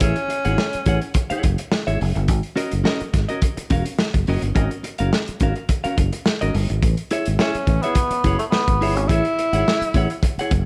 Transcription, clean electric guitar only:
0.01 E4 G#4 C#5 E5
0.17 muted clean electric guitar stroke
0.28 muted clean electric guitar stroke
0.45 E4 G#4 C#5 F#5
0.58 muted clean electric guitar stroke
0.86 E4 G#4 C#5 F#5
1.01 muted clean electric guitar stroke
1.16 muted clean electric guitar stroke
1.30 E4 G#4 C#5 F#5
1.43 muted clean electric guitar stroke
1.59 muted clean electric guitar stroke
1.72 muted clean electric guitar stroke
1.87 E4 G#4 C#5 E5
2.00 muted clean electric guitar stroke
2.16 muted clean electric guitar stroke
2.56 C#4 F#4 A#4 D#5
2.84 C#4 F#4 A#4 D#5
3.13 muted clean electric guitar stroke
3.29 C#4 F#4 A#4 D#5
3.57 muted clean electric guitar stroke
3.70 C#4 F#4 A#4 F5
3.85 muted clean electric guitar stroke
4.14 muted clean electric guitar stroke
4.28 C#4 F#4 A#4 D#5
4.43 muted clean electric guitar stroke
4.55 C#4 F#4 A#4 D#5
4.70 muted clean electric guitar stroke
4.83 muted clean electric guitar stroke
4.99 C#4 F#4 A#4 F5
5.14 muted clean electric guitar stroke
5.42 C#4 F#4 A#4 F5
5.56 muted clean electric guitar stroke
5.70 muted clean electric guitar stroke
5.84 C#4 F#4 A#4 F5
5.97 muted clean electric guitar stroke
6.13 muted clean electric guitar stroke
6.26 muted clean electric guitar stroke
6.41 C#4 F#4 A#4 D#5
6.55 muted clean electric guitar stroke
6.70 muted clean electric guitar stroke
7.11 E4 G#4 C#5 E5
7.40 E4 G#4 C#5 E5
7.69 muted clean electric guitar stroke
7.84 E4 G#4 C#5 E5
8.12 muted clean electric guitar stroke
8.24 E4 G#4 C#5 F#5
8.40 muted clean electric guitar stroke
8.68 muted clean electric guitar stroke
8.81 E4 G#4 C#5 E5
8.97 muted clean electric guitar stroke
9.10 E4 G#4 C#5 E5
9.25 muted clean electric guitar stroke
9.39 muted clean electric guitar stroke
9.53 E4 G#4 C#5 F#5
9.68 muted clean electric guitar stroke
9.95 E4 G#4 C#5 F#5
10.11 muted clean electric guitar stroke
10.24 muted clean electric guitar stroke
10.39 E4 G#4 C#5 F#5

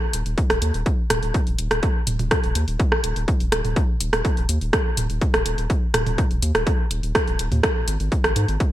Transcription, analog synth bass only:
0.13 D#1
0.26 D#1
0.50 D#1
0.62 D#2
0.74 D#1
1.10 D#1
1.23 D#1
1.47 D#1
1.59 D#1
1.71 D#1
2.07 D#1
2.19 D#1
2.44 D#1
2.55 D#2
2.68 D#1
3.04 D#1
3.16 D#1
3.40 D#1
3.52 D#1
3.65 D#1
4.01 D#1
4.13 D#1
4.37 D#1
4.49 D#2
4.61 D#1
4.97 D#1
5.10 D#1
5.34 D#1
5.46 D#1
5.58 D#1
5.94 D#1
6.06 D#1
6.31 D#1
6.42 D#2
6.55 D#1
6.91 D#1
7.03 D#1
7.27 D#1
7.39 D#1
7.52 D#2
7.88 G#1
8.00 G#1
8.24 G#1
8.36 G#2
8.48 G#1

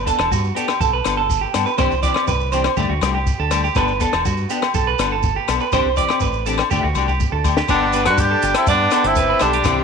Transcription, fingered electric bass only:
Already playing: G1
0.19 E1
0.32 G2
0.81 B1
1.06 G1
1.55 G2
1.79 C2
1.92 C2
2.28 C2
2.77 D2
2.89 D2
3.01 C2
3.39 D2
3.76 G1
4.13 E1
4.26 G2
4.75 B1
4.99 G1
5.48 B1
5.73 C2
5.85 C2
6.22 A1
6.72 D2
6.84 D2
6.95 C2
7.32 D2
7.69 G1
8.06 G2
8.43 G1
8.67 G2
9.04 G1
9.41 B1
9.65 C2

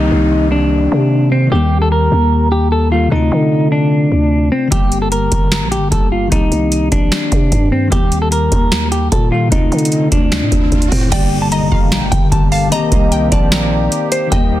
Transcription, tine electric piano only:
Already playing: D#3 A#3 C4 G4
1.47 D#3 G3
1.53 A#3 G4
2.90 D#3 G3 A#3
2.94 A4
3.08 C3 A3
3.13 C4 F4
4.68 D3 G3
4.73 A#3 G4
5.90 D3 G3 A#3 G4
6.27 D#3 A#3
6.33 C4 G4
7.87 D#3 G3
7.93 A#3 G4
9.30 D#3 G3 A#3
9.34 A4
9.48 C3 A3
9.53 C4 F4
11.08 D3 G3
11.13 A#3 G4
12.30 D3 G3 A#3
12.34 G4
12.67 D#3 A#3
12.73 C4 G4
14.27 D#3 G3
14.33 A#3 G4

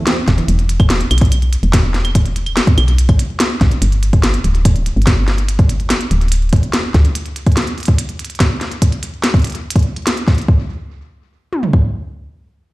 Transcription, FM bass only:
0.28 E1
0.48 E1
1.11 B1
1.63 E1
2.78 B1
3.61 B1
3.82 G1
4.44 D1
4.96 G1
6.11 D1
6.94 D2

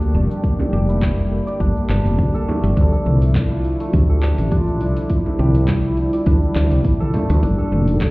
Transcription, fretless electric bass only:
Already playing: D2
0.15 F1
0.73 F1
1.60 G1
1.89 G1
2.05 F1
2.19 D2
2.64 G1
2.77 D2
3.06 C2
3.93 D2
4.38 A1
4.81 C2
5.39 C2
6.26 D2
6.56 D2
6.72 C2
6.85 A1
7.30 D2
7.43 G1
7.72 F1

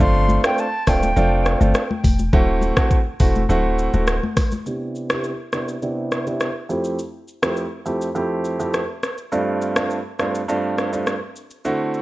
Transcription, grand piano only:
0.00 A3 C4 D4 F4
0.44 A3 C4 D4 F4
0.87 A3 C4 D4 F4
1.16 A3 C4 D4 F4
1.60 A3 C4 D4 F4
2.33 A3 C4 E4 F#4
2.77 A3 C4 E4 F#4
3.20 A3 C4 E4 F#4
3.49 A3 C4 E4 F#4
3.94 A3 C4 E4 F#4
4.66 C3 B3 D4 E4 G4
5.10 C3 B3 D4 E4 G4
5.53 C3 B3 D4 E4 G4
5.82 C3 B3 D4 E4 G4
6.26 C3 B3 D4 E4 G4
6.69 F2 A3 C4 E4 G4
7.43 F2 A3 C4 E4 G4
7.86 F2 A3 C4 E4 G4
8.15 F2 A3 C4 E4 G4
8.59 F2 A3 C4 E4 G4
9.32 G2 A3 C4 D4 F4
9.76 G2 A3 C4 D4 F4
10.19 G2 A3 C4 D4 F4
10.48 G2 A3 C4 D4 F4
10.93 G2 A3 C4 D4 F4
11.65 D3 A3 C4 E4 F#4

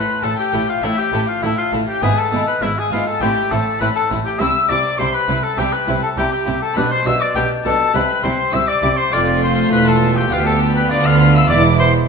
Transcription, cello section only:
0.23 A2
0.54 A2
0.84 A2
1.14 A2
1.43 A2
1.73 A2
2.02 G#2
2.32 G#2
2.63 G#2
2.93 G#2
3.22 A2
3.52 A2
3.82 A2
4.11 A2
4.41 C3
4.70 C3
5.00 C3
5.29 C3
5.58 C3
5.88 C3
6.17 C3
6.47 C3
6.77 B2
7.06 B2
7.36 B2
7.65 B2
7.94 C3
8.24 C3
8.54 C3
8.83 C3
9.12 F2
9.72 E2
10.32 D2
10.91 D3
11.50 E2

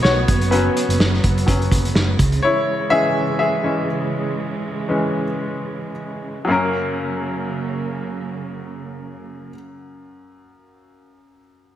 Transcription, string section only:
Already playing: D#3 F#3 B3
0.29 C#3 F#3
2.20 E3 G#3
6.48 C#3 F#3 A#3

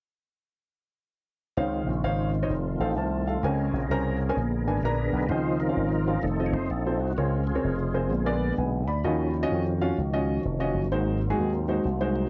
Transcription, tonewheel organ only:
1.57 D#3 C4 C#4 F4
2.50 A3 C4
3.43 C#4 G#4 A#4
4.36 D3 B3
4.83 D4 G#4 B4
5.29 D#3 F3 C4 D#4 F4 C5
5.60 D#4 F4 A#4
6.22 D#3 A3 C4 D#4 A4
6.46 C#5
6.54 C5
6.70 A4
7.00 F#4
7.17 C#3 G#3 C4 F4 G#4
7.47 C4 F4 G#4
8.10 D3 G#3 B3
9.04 D#3 F3 C#4
10.92 F#3 A#3 C4
12.15 F#3 A#3 C4

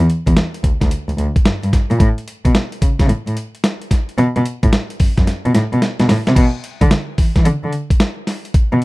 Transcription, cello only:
0.27 E2
0.64 D2
0.82 D2
1.09 D2
1.18 D2
1.45 G2
1.63 G2
1.90 A#2
2.00 A2
2.45 B2
2.82 C#3
3.00 C#3
3.09 A2
3.27 A2
4.18 B2
4.36 B2
4.63 A2
5.00 F#2
5.18 F#2
5.46 B2
5.55 A2
5.73 B2
6.00 B2
6.10 A2
6.28 C3
6.36 B2
6.81 D3
7.18 E3
7.36 E3
7.46 D3
7.64 D3
8.73 B2

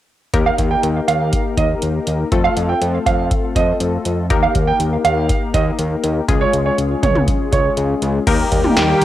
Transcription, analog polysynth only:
0.34 A#3 D#4 G4 A#4
2.32 A3 C4 F4 A4
4.30 A#3 D#4 G4 A#4
6.28 G#3 C#4 F4 G#4
8.27 A#3 D#4 G4 A#4

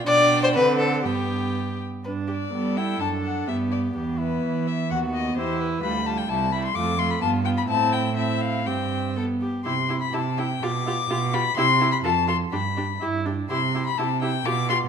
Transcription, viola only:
0.07 D4
0.55 C4
1.04 B3
2.05 D4
2.53 B3
2.77 E4
3.00 D4
3.47 B3
3.95 B3
4.90 B3
5.38 E4
5.83 G3
6.07 G3
6.30 G3
6.53 G3
6.76 A3
7.00 A3
7.23 B3
7.46 B3
7.70 C4
8.17 C4
8.66 C4
9.16 B3
9.66 E4
9.89 E4
10.13 E4
10.38 E4
10.63 F4
10.87 F4
11.10 F4
11.34 F4
11.57 E4
11.81 E4
12.04 F4
12.28 F4
12.53 D4
12.77 D4
13.01 E4
13.26 D4
13.50 E4
13.74 E4
13.98 E4
14.22 E4
14.46 F4
14.69 F4

